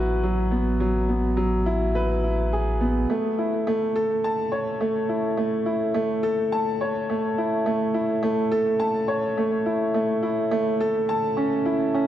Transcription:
0.00 3.06 A1 medium
0.00 0.23 F#3 medium
0.00 0.51 B3 medium
0.00 1.66 E4 medium
0.00 0.22 F#4 medium
0.00 1.95 B4 medium
0.23 0.51 F#3 medium
0.51 0.79 B3 medium
0.80 1.08 F#3 medium
1.09 1.36 B3 medium
1.37 1.65 F#3 medium
1.66 1.93 E4 medium
1.95 2.22 B4 medium
2.24 2.51 E4 medium
2.53 2.69 G#4 medium
2.81 2.97 B3 medium
3.09 12.07 A1 medium
3.09 3.37 A3 medium
3.38 3.65 E4 medium
3.67 3.94 A3 medium
3.96 4.22 A4 medium
4.24 4.51 A5 medium
4.52 4.79 C#5 medium
4.81 5.08 A3 medium
5.09 5.36 E4 medium
5.37 5.65 A3 medium
5.66 5.93 E4 medium
5.94 6.22 A3 medium
6.23 6.50 A4 medium
6.52 6.79 A5 medium
6.81 7.08 C#5 medium
7.10 7.37 A3 medium
7.38 7.65 E4 medium
7.66 7.93 A3 medium
7.94 8.22 E4 medium
8.23 8.50 A3 medium
8.52 8.79 A4 loud
8.80 9.07 A5 medium
9.08 9.36 C#5 medium
9.38 9.65 A3 medium
9.66 9.93 E4 medium
9.94 10.22 A3 medium
10.23 10.50 E4 medium
10.51 10.79 A3 medium
10.80 11.08 A4 medium
11.09 11.36 A5 medium
11.37 11.54 C#4 medium
11.66 11.93 E4 medium
11.94 12.07 C#4 medium

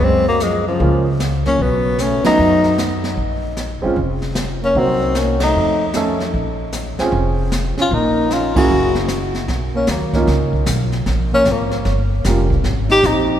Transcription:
0.01 0.76 F#2 medium
0.01 0.27 G#3 medium
0.01 0.28 C4 medium
0.01 brush sweep soft
0.01 kick soft
0.28 0.44 F#3 medium
0.28 0.44 A#3 medium
0.40 0.67 F3 medium
0.40 0.67 G#3 medium
0.40 snare medium
0.40 hi-hat pedal medium
0.68 1.04 C#3 medium
0.68 1.04 F3 medium
0.79 1.41 C#2 medium
0.79 1.03 G#3 medium
0.79 1.03 A#3 soft
0.79 1.04 C#4 medium
0.79 1.04 F4 medium
0.79 brush sweep soft
0.79 kick soft
1.20 snare medium
1.20 hi-hat pedal medium
1.45 1.59 F#2 medium
1.45 1.63 A#3 medium
1.45 1.64 C#4 medium
1.45 snare soft
1.59 2.21 B1 medium
1.59 2.02 F#3 medium
1.59 2.03 B3 medium
1.59 brush sweep soft
1.59 kick soft
1.98 2.23 A3 medium
1.98 2.26 C#4 medium
1.98 snare medium
1.98 hi-hat pedal medium
2.24 2.75 F#3 medium
2.24 2.75 A3 medium
2.24 2.74 B3 medium
2.24 2.75 C#4 medium
2.24 2.76 D#4 medium
2.24 2.75 D#4 medium
2.24 muted upright bass stroke soft
2.24 snare medium
2.24 ride medium
2.38 3.14 F#2 medium
2.38 brush sweep soft
2.64 snare soft
2.78 snare medium
2.78 hi-hat pedal medium
3.04 snare soft
3.17 3.78 A#1 medium
3.17 brush sweep soft
3.17 kick soft
3.57 snare medium
3.57 hi-hat pedal soft
3.82 3.95 A1 medium
3.82 3.95 G#3 medium
3.82 3.95 C4 medium
3.82 3.96 C#4 medium
3.82 3.96 F4 medium
3.96 4.71 F1 medium
3.96 brush sweep medium
3.96 kick soft
4.22 snare soft
4.35 snare medium
4.35 hi-hat pedal medium
4.62 4.79 A#3 medium
4.62 4.80 C#4 medium
4.75 5.50 C2 medium
4.75 5.18 F#3 medium
4.75 5.35 A#3 medium
4.75 5.36 C4 soft
4.75 5.21 C4 medium
4.75 5.36 D#4 soft
4.75 5.36 F#4 medium
4.75 brush sweep soft
4.75 kick soft
5.15 5.40 A#3 medium
5.15 snare medium
5.15 hi-hat pedal soft
5.19 5.43 C#4 medium
5.40 5.90 A3 medium
5.40 5.91 D#4 medium
5.40 snare medium
5.40 ride medium
5.54 6.30 F2 medium
5.54 brush sweep medium
5.94 6.17 A3 medium
5.94 6.18 C#4 medium
5.94 6.18 D#4 medium
5.94 6.18 A4 medium
5.94 snare medium
5.94 hi-hat pedal medium
6.20 snare soft
6.34 6.95 A#1 medium
6.34 brush sweep soft
6.34 kick soft
6.72 snare soft
6.72 hi-hat pedal medium
6.99 7.49 C4 medium
6.99 7.50 C#4 medium
6.99 7.50 F4 medium
6.99 7.50 G#4 medium
6.99 muted upright bass stroke soft
6.99 snare medium
7.12 7.73 F1 medium
7.12 brush sweep soft
7.12 kick soft
7.52 snare medium
7.52 hi-hat pedal medium
7.78 7.94 C#4 medium
7.78 7.96 F4 medium
7.78 muted upright bass stroke soft
7.78 snare soft
7.91 8.66 A#1 medium
7.91 8.33 A#3 medium
7.91 8.35 D#4 medium
7.91 brush sweep soft
7.91 kick soft
8.30 8.55 C#4 medium
8.30 8.57 F4 medium
8.30 snare soft
8.30 hi-hat pedal soft
8.55 9.06 A#3 medium
8.55 9.05 C#4 medium
8.55 9.07 C#4 medium
8.55 9.07 E4 medium
8.55 9.07 F#4 medium
8.55 9.07 G#4 medium
8.55 kick medium
8.55 ride medium
8.70 9.45 F#1 medium
8.70 brush sweep soft
8.95 snare soft
9.08 snare medium
9.08 hi-hat pedal soft
9.35 snare soft
9.48 9.87 B1 medium
9.48 brush sweep soft
9.48 kick soft
9.48 snare soft
9.74 9.92 A#3 medium
9.74 9.92 C#4 medium
9.87 10.26 D#2 medium
9.87 10.29 F#3 soft
9.87 10.29 A#3 medium
9.87 kick soft
9.87 snare medium
9.87 hi-hat pedal medium
10.13 10.64 A#3 medium
10.13 10.65 C#4 medium
10.13 10.65 D#4 medium
10.13 10.65 F4 medium
10.13 kick soft
10.13 snare soft
10.27 10.66 C#2 medium
10.27 brush sweep soft
10.27 kick soft
10.27 snare soft
10.53 kick soft
10.66 11.05 B1 medium
10.66 kick soft
10.66 snare medium
10.66 hi-hat pedal medium
10.92 snare soft
11.06 11.45 A#1 medium
11.06 brush sweep soft
11.06 kick soft
11.06 snare soft
11.33 11.50 A#3 medium
11.33 11.53 C#4 loud
11.45 11.84 G#1 medium
11.45 11.86 F3 medium
11.45 kick soft
11.45 snare medium
11.45 hi-hat pedal soft
11.52 11.88 A#3 medium
11.71 snare soft
11.85 12.23 G1 medium
11.85 brush sweep soft
11.85 kick soft
11.85 snare soft
12.24 12.63 F1 medium
12.24 12.48 G3 medium
12.24 12.49 A#3 medium
12.24 12.49 C#4 soft
12.24 12.49 F4 medium
12.24 kick soft
12.24 snare medium
12.24 hi-hat pedal medium
12.50 kick medium
12.64 13.02 G#1 medium
12.64 brush sweep soft
12.64 kick soft
12.64 snare soft
12.89 13.08 D#4 medium
12.89 13.08 G4 loud
12.89 snare soft
13.03 13.40 A#1 medium
13.03 13.40 C4 medium
13.03 13.40 D#4 medium
13.03 kick soft
13.03 snare medium
13.03 hi-hat pedal medium

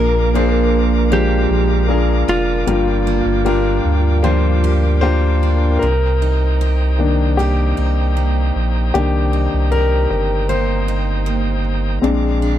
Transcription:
0.00 1.47 A#1 loud
0.00 0.69 A#2 medium
0.00 2.67 A#2 medium
0.00 0.31 A#3 medium
0.00 3.07 A#3 medium
0.00 0.31 D4 medium
0.00 0.31 F4 medium
0.00 0.31 G#4 medium
0.00 0.32 A#4 medium
0.00 1.17 A#4 loud
0.00 5.78 A#4 medium
0.00 2.64 F5 medium
0.00 2.65 A#5 medium
0.00 5.78 D6 medium
0.34 1.08 A#3 medium
0.34 1.08 D4 medium
0.34 2.28 D4 medium
0.34 1.08 F4 medium
0.34 1.08 G#4 medium
0.34 1.08 C5 medium
1.10 4.23 F3 medium
1.10 1.86 G#3 medium
1.10 1.85 A#3 medium
1.10 1.85 D4 medium
1.10 1.85 F4 medium
1.10 1.86 G4 medium
1.10 1.86 C5 medium
1.50 2.24 A#1 loud
1.89 2.63 A#3 medium
1.89 2.63 D4 medium
1.89 2.63 F4 medium
1.89 2.63 G#4 medium
1.89 2.64 A#4 medium
2.28 2.64 F1 loud
2.28 3.45 D4 medium
2.28 5.39 F4 medium
2.67 3.21 G1 medium
2.67 3.80 G2 medium
2.67 5.82 G2 medium
2.67 3.41 A#3 medium
2.67 3.41 D4 medium
2.67 3.41 F4 medium
2.67 3.42 G4 medium
2.67 3.42 A#4 medium
2.67 5.79 F5 medium
2.67 5.79 G5 medium
3.07 6.57 A#3 medium
3.26 3.80 G1 medium
3.45 4.19 A#3 medium
3.45 4.19 D4 medium
3.45 5.42 D4 medium
3.45 4.20 F4 medium
3.45 4.20 G4 medium
3.45 4.20 A#4 medium
3.85 5.78 D2 medium
4.23 5.90 F3 medium
4.23 4.98 A#3 medium
4.23 4.98 D4 medium
4.23 4.99 F4 medium
4.23 4.99 G4 medium
4.23 4.99 C5 loud
4.64 6.61 G4 medium
5.01 5.77 A#3 medium
5.01 5.77 D4 medium
5.01 5.78 F4 medium
5.01 5.78 G4 medium
5.01 5.77 A#4 medium
5.01 5.83 C5 loud
5.43 5.90 D4 medium
5.79 7.74 C2 medium
5.79 8.94 C3 medium
5.79 7.33 A#4 medium
5.79 11.99 C5 medium
5.79 11.99 G5 medium
5.79 12.59 A#5 medium
5.79 11.99 D#6 medium
6.22 7.38 D#4 medium
6.61 7.39 G4 medium
6.99 7.51 D#3 soft
6.99 7.51 A#3 soft
6.99 7.51 D4 medium
7.37 8.16 A#3 soft
7.37 7.76 D#4 soft
7.37 8.92 G4 medium
7.37 9.71 G4 medium
7.77 8.52 C2 medium
7.77 9.32 D#4 medium
8.17 10.49 A#3 medium
8.55 8.92 A#1 medium
8.94 9.48 C2 medium
8.94 12.03 C3 medium
8.94 9.29 D#3 soft
8.94 9.30 A#3 soft
8.94 11.99 D4 medium
8.94 9.74 G4 medium
9.33 10.49 D#4 medium
9.54 10.07 C2 loud
9.72 10.49 G4 medium
9.72 10.07 A#4 medium
10.10 11.99 G1 medium
10.10 10.50 A#4 medium
10.49 11.26 A#3 medium
10.49 10.87 D#4 soft
10.49 12.11 G4 soft
10.49 11.60 C5 medium
10.88 12.11 D#4 medium
11.26 12.59 A#3 medium
12.02 12.59 A#1 loud
12.02 12.59 A#2 medium
12.02 12.53 G#3 soft
12.02 12.54 C4 soft
12.02 12.54 D4 medium
12.02 12.59 G#4 medium
12.02 12.59 F5 medium
12.02 12.59 D6 medium
12.42 12.59 D4 medium

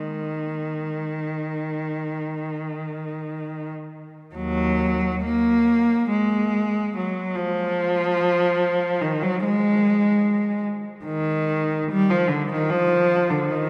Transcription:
0.00 3.74 D#3 soft
4.35 5.20 D#2 soft
4.35 5.20 F#3 medium
5.25 6.09 A#3 medium
6.10 6.93 G#3 medium
6.97 7.37 F#3 medium
7.36 9.00 F3 medium
9.01 9.21 D#3 medium
9.23 9.42 F#3 medium
9.44 10.63 G#3 medium
11.05 11.84 D#3 medium
11.91 12.10 G3 medium
12.10 12.29 F3 medium
12.28 12.49 D3 medium
12.53 12.71 D#3 medium
12.70 13.30 F3 medium
13.30 13.50 D3 medium
13.51 13.70 D#3 medium

